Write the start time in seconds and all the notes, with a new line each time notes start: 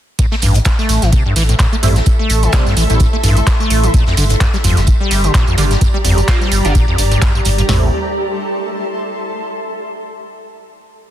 0.19 A2 A4, kick, closed hi-hat, tambourine
0.31 A3 E5, snare
0.42 A1 G2, open hi-hat, tambourine
0.54 A2, closed hi-hat, tambourine
0.65 kick, snare, clap, closed hi-hat, tambourine
0.79 A3, snare, tambourine
0.89 A1, snare, open hi-hat, tambourine
1.02 A1 E3, snare, closed hi-hat, tambourine
1.12 C3, kick, closed hi-hat, tambourine
1.18 A5
1.26 G2
1.36 A1 E3, snare, open hi-hat, tambourine
1.49 A2, closed hi-hat, tambourine
1.59 A2, kick, snare, clap, closed hi-hat, tambourine
1.72 A3, tambourine
1.83 A1 G2 G3 A3 C4 E4, open hi-hat, tambourine
1.88 C6
1.96 A2, snare, closed hi-hat, tambourine
2.06 kick, closed hi-hat, tambourine
2.19 A3
2.29 A1, open hi-hat, tambourine
2.43 E3, closed hi-hat, tambourine
2.52 C3 G3 A3 C4 D4, kick, snare, clap, closed hi-hat, tambourine
2.66 G2, snare, tambourine
2.77 A1 E3, open hi-hat, tambourine
2.90 A1 A2 G3 A3 C4 E4, closed hi-hat, tambourine
3.00 A2, kick, closed hi-hat, tambourine
3.13 A3
3.23 A1 G2, open hi-hat, tambourine
3.37 A2, closed hi-hat, tambourine
3.47 kick, snare, clap, closed hi-hat, tambourine
3.60 A3, tambourine
3.70 A1, open hi-hat, tambourine
3.83 E3, closed hi-hat, tambourine
3.94 A#2 G4, kick, closed hi-hat, tambourine
4.06 F2, snare
4.16 G1 D3 D5, open hi-hat, tambourine
4.29 G2, closed hi-hat, tambourine
4.40 G2, kick, snare, clap, closed hi-hat, tambourine
4.54 G3, snare, tambourine
4.64 G1 F2, snare, open hi-hat, tambourine
4.72 A#5
4.77 G1 G2, snare, closed hi-hat, tambourine
4.87 kick, closed hi-hat, tambourine
5.00 G3
5.11 G1, snare, open hi-hat, tambourine
5.24 D3, closed hi-hat, tambourine
5.34 A#2, kick, snare, clap, closed hi-hat, tambourine
5.47 F2, tambourine
5.58 G1 D3 F3 G3 A#3 D4, open hi-hat, tambourine
5.71 G2, snare, closed hi-hat, tambourine
5.81 G2, kick, closed hi-hat, tambourine
5.94 G3
6.04 G1 F2, open hi-hat, tambourine
6.17 G2, closed hi-hat, tambourine
6.28 F3 G3 A#3 C4, kick, snare, clap, closed hi-hat, tambourine
6.41 G3, snare, tambourine
6.51 G1, open hi-hat, tambourine
6.65 G1 D3 F3 G3 A#3 D4, closed hi-hat, tambourine
6.75 A#2, kick, closed hi-hat, tambourine
6.88 F2
6.98 G1 G2, open hi-hat, tambourine
7.12 G2, closed hi-hat, tambourine
7.22 kick, snare, clap, closed hi-hat, tambourine
7.35 G2, tambourine
7.45 G1 G2, open hi-hat, tambourine
7.58 G2, closed hi-hat, tambourine
7.69 A1 A2 G3 A3 C4 E4 A4, snare, floor tom, open hi-hat
7.77 E5
7.84 A5
7.90 C6